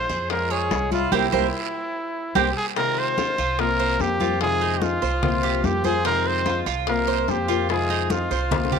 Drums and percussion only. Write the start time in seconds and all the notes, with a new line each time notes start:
0.10 short guiro
0.30 high bongo, high conga, long guiro
0.50 high conga
0.71 high bongo, low bongo, high conga, short guiro
0.91 high conga, short guiro
1.12 low bongo, high conga, long guiro
1.32 low bongo, high conga, long guiro
2.35 low bongo, high conga, long guiro
2.76 high bongo, high conga, long guiro
2.97 high bongo, high conga
3.18 high bongo, high conga, short guiro
3.38 high bongo, high conga, short guiro
3.58 high bongo, high conga, long guiro
3.79 high conga
3.99 high bongo, low bongo, high conga, short guiro
4.20 high bongo, high conga, short guiro
4.41 high bongo, high conga, long guiro
4.61 high bongo, high conga
4.82 high bongo, high conga, short guiro
5.02 high bongo, high conga, short guiro
5.23 high bongo, high conga, low conga, long guiro
5.64 high bongo, low bongo, high conga, short guiro
5.84 high bongo, high conga, short guiro
6.04 high bongo, high conga, long guiro
6.25 high bongo, high conga
6.46 high bongo, high conga, short guiro
6.66 high bongo, high conga, short guiro
6.87 high bongo, high conga, long guiro
7.07 high conga
7.28 high bongo, low bongo, high conga, short guiro
7.49 high bongo, short guiro
7.69 high bongo, high conga, long guiro
7.89 high bongo, high conga
8.10 high bongo, high conga, short guiro
8.31 high bongo, high conga, short guiro
8.51 high bongo, high conga, low conga, long guiro
8.65 high bongo
8.72 high conga, low conga